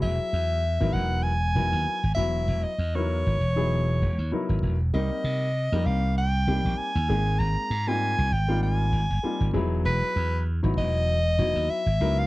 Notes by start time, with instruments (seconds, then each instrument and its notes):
Already playing: grand piano F#3 B3 E4 F#4 G#4
0.02 slap bass E1, soprano saxophone E5
0.33 slap bass E2
0.80 slap bass G#1, grand piano F#3 B3 D#4 E4 A#4
0.93 slap bass E1, soprano saxophone F#5
1.23 soprano saxophone G#5
1.55 slap bass E1, grand piano F#3 B3 D#4 E4 A#4
1.72 slap bass D#2
1.86 muted slap bass stroke
2.03 slap bass G#1
2.15 slap bass E1, grand piano F#3 B3 E4 F#4, soprano saxophone E5
2.48 slap bass E1
2.63 soprano saxophone D#5
2.78 slap bass E2
2.95 grand piano F#3 B3 D#4 E4 A#4, soprano saxophone C#5
3.26 slap bass G#1
3.40 slap bass E1
3.56 grand piano F#3 B3 D#4 E4 G#4
4.02 slap bass E1
4.18 slap bass D#2
4.32 grand piano F#3 B3 D#4 E4 A#4, muted slap bass stroke
4.49 slap bass G#1
4.62 slap bass E1
4.93 slap bass C2, grand piano G3 A#3 C4 D#4 A#4, soprano saxophone D#5
5.24 slap bass C3
5.72 slap bass F2, grand piano G3 A#3 C4 D#4 A#4
5.86 slap bass C2, soprano saxophone F5
6.18 soprano saxophone G5
6.47 slap bass C2, grand piano G3 A#3 C4 D#4 G4
6.65 slap bass A#1
6.78 soprano saxophone G#5, muted slap bass stroke
6.95 slap bass D#2
7.09 slap bass G#1, grand piano G#3 A#3 C4 D#4 G#4
7.39 slap bass G#1, soprano saxophone A#5
7.70 slap bass G#2
7.87 grand piano G3 A#3 C4 D#4 F4, soprano saxophone G#5
8.18 slap bass C2
8.31 slap bass G#1, soprano saxophone G5
8.48 grand piano G3 A#3 C4 D#4 F4
8.63 soprano saxophone G#5
8.92 slap bass G#1
9.10 slap bass G1
9.23 grand piano G3 A#3 C4 D#4 F4
9.40 slap bass G#1
9.53 slap bass E1, grand piano F#3 B3 D#4 E4 G#4
9.85 slap bass E1, soprano saxophone B4
10.16 slap bass E2
10.63 slap bass G#1, grand piano F#3 B3 D#4 E4 F#4
10.77 slap bass E1, soprano saxophone D#5
11.39 slap bass E1, grand piano F#3 B3 D#4 E4 F#4
11.55 slap bass D#2
11.69 soprano saxophone E5, muted slap bass stroke
11.86 slap bass G#1
12.00 slap bass C#2, grand piano F#3 B3 D#4 E4 A#4
12.19 soprano saxophone F5